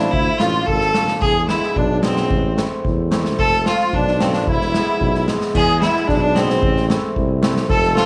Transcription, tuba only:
Already playing: A1
0.13 D2
0.40 A1
0.68 G#1
0.95 F1
1.22 E2
1.76 B1
2.31 A1
2.84 E2
3.39 F1
3.93 B1
4.47 E1
5.01 B1
5.55 E2
6.08 B1
6.62 A1
7.16 C2
7.70 F1

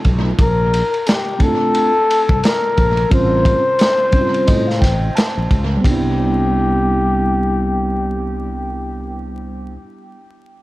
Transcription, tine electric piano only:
1.38 A3 C4 D4 E4
1.48 F4
3.10 G3 C4 C#4 F4
4.11 G3 C4 C#4 D#4 C5
4.21 F4
4.47 D#5
4.67 F5
4.81 G5
5.15 A5
5.77 G3
5.81 B3
5.86 D4
5.91 E4

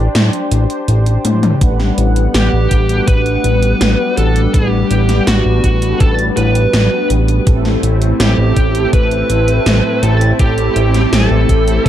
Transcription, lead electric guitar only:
2.35 G4
3.08 B4
4.18 A4
4.54 G4
5.28 F#4
6.00 A4
6.37 B4
8.20 G4
8.94 B4
10.03 A4
10.40 G4
11.13 A4

